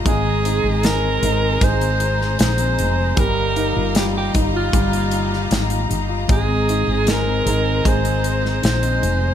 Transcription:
<<
  \new Staff \with { instrumentName = "String section" } { \time 4/4 \key aes \lydian \tempo 4 = 77 << { bes''1~ | bes''1~ | bes''1 | } \\ { <aes' c'' ees''>1 | <g' ees'' f''>1 | <aes' c'' ees''>1 | } >> }
  \new Staff \with { instrumentName = "Alto saxophone" } { \time 4/4 \key aes \lydian aes'4 bes'4 c''4 c''4 | bes'4 g'16 g'8 f'4.~ f'16 r8 | aes'4 bes'4 c''4 c''4 | }
  \new Staff \with { instrumentName = "Steel-string acoustic guitar" } { \time 4/4 \key aes \lydian aes16 c'16 ees'16 bes'16 ees'16 c'16 ees'16 bes'16 aes16 c'16 ees'16 bes'16 ees'16 c'16 ees'16 bes'16 | g16 bes16 ees'16 f'16 ees'16 bes16 ees'16 f'16 g16 bes16 ees'16 f'16 ees'16 bes16 ees'16 f'16 | aes16 c'16 ees'16 bes'16 ees'16 c'16 ees'16 bes'16 aes16 c'16 ees'16 bes'16 ees'16 c'16 ees'16 bes'16 | }
  \new Staff \with { instrumentName = "Grand piano" } { \clef bass \time 4/4 \key aes \lydian aes8 ees'8 aes8 ees'8 aes2 | g8 ees'8 g8 ees'8 g2 | aes8 ees'8 aes8 ees'8 aes2 | }
  \new Staff \with { instrumentName = "Fretless electric bass" } { \clef bass \time 4/4 \key aes \lydian aes,,8. aes,,8. aes,,8 aes,,4 bes,,8 f,,8 | g,,8. g,,8. g,,8 g,,4 aes,,8 g,,8 | aes,,8. aes,,8. aes,,8 aes,,4 bes,,8 f,,8 | }
  \new DrumStaff \with { instrumentName = "Drums" } \drummode { \time 4/4 <hh bd>8 hh8 <hh sn>8 hh8 <hh bd>16 hh16 hh16 sn16 <hh sn>16 hh16 hh8 | <hh bd>8 hh8 <hh sn>8 <hh bd>8 <hh bd>16 hh16 hh16 sn16 <hh sn>16 hh16 hh8 | <hh bd>8 hh8 <hh sn>8 hh8 <hh bd>16 hh16 hh16 sn16 <hh sn>16 hh16 hh8 | }
>>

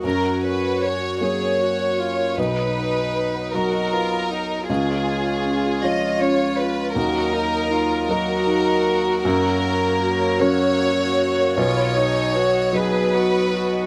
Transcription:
<<
  \new Staff \with { instrumentName = "Marimba" } { \time 6/8 \key ges \major \tempo 4. = 52 ges'16 ges''16 des''16 r16 ges'16 des''16 bes'16 bes'16 ges'16 ges''16 des''16 bes'16 | b'16 b''16 fis''16 r16 b'16 fis''16 dis''16 dis''16 b'16 b''16 fis''16 dis''16 | des'16 des''16 aes'16 r16 des'16 aes'16 f'16 f'16 des'16 des''16 aes'16 f'16 | ees'16 ees''16 bes'16 r16 ees'16 bes'16 r16 ges'16 ees'16 ees''16 bes'16 ges'16 |
ges'16 ges''16 des''16 r16 ges'16 des''16 bes'16 bes'16 ges'16 ges''16 des''16 bes'16 | b'16 b''16 fis''16 r16 b'16 fis''16 dis''16 dis''16 b'16 b''16 fis''16 dis''16 | }
  \new Staff \with { instrumentName = "Violin section" } { \time 6/8 \key ges \major bes'8 ces''8 des''8 des''4. | b'4. bes'4. | aes'4. ees''8 des''8 ces''8 | bes'4. bes'4. |
bes'4. des''4. | des''4. b'4. | }
  \new Staff \with { instrumentName = "Viola" } { \time 6/8 \key ges \major ges'4. aes'8 ges'8 f'8 | dis'4. fis'8 f'8 dis'8 | f'2. | ges'8 ees'8 f'8 ges'4.~ |
ges'4. ges'4. | f'8 dis'8 fis'8 aes'8 fis'8 fis'8 | }
  \new Staff \with { instrumentName = "Harmonium" } { \time 6/8 \key ges \major des''2. | dis''2. | des''2. | ees''2. |
des''2. | dis''2. | }
  \new Staff \with { instrumentName = "Harmonium" } { \time 6/8 \key ges \major des'2. | fis2. | <aes f'>2. | <ges bes>2.~ |
<ges bes>2. | <fis b>2. | }
  \new Staff \with { instrumentName = "Upright piano" } { \clef bass \time 6/8 \key ges \major ges,4. <ges bes ges'>4. | b,,4. <fis dis' fis'>4. | des,4. <f f' des''>4. | ees,4. <ges ees' bes'>4. |
ges,4. <ges des' bes'>4. | b,,4. <fis dis' b'>4. | }
>>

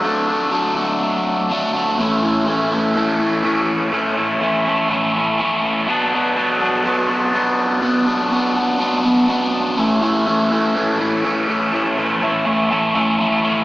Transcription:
\new Staff \with { instrumentName = "Overdriven electric guitar" } { \time 4/4 \key a \major \tempo 4 = 123 <d fis a d'>8 <fis a d'>8 <d fis a d'>8 <fis a d'>4. <d fis a d'>8 <fis a d'>8 | <a, e a cis' e'>8 <a cis' e'>8 <e a cis' e'>8 <a cis' e'>8 <a, e a cis' e'>8 <a cis' e'>8 <e a cis' e'>4 | <a, e a cis' e'>8 <a cis' e'>8 <e a cis' e'>8 <a cis' e'>8 <a, e a cis' e'>8 <a cis' e'>8 <e a cis' e'>4 | <b, fis b d'>8 <fis b d'>8 <b, fis b d'>8 <fis b d'>8 <b, fis b d'>8 <fis b d'>8 <b, fis b d'>4 |
<b, fis b d'>8 <fis b d'>8 <b, fis b d'>8 <fis b d'>8 <b, fis b d'>8 <fis b d'>8 <b, fis b d'>4 | <a, e a cis' e'>8 <a, e a cis' e'>8 <a, e a cis' e'>8 <a, e a cis' e'>8 <a, e a cis' e'>8 <a, e a cis' e'>8 <a, e a cis' e'>8 <a, e a cis' e'>8 | <a, e a cis' e'>8 <a, e a cis' e'>8 <a, e a cis' e'>8 <a, e a cis' e'>8 <a, e a cis' e'>8 <a, e a cis' e'>8 <a, e a cis' e'>8 <a, e a cis' e'>8 | }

